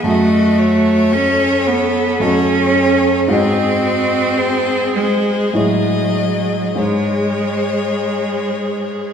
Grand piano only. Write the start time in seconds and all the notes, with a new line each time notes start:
0.04 F#2 A3 F#4 D#5
2.20 F#2 A3 F#4 D#5
3.28 G#2 G#3 F#4 D#5
5.53 A2 G#3 E4 C#5
6.75 G#2 G#3 G#4 C#5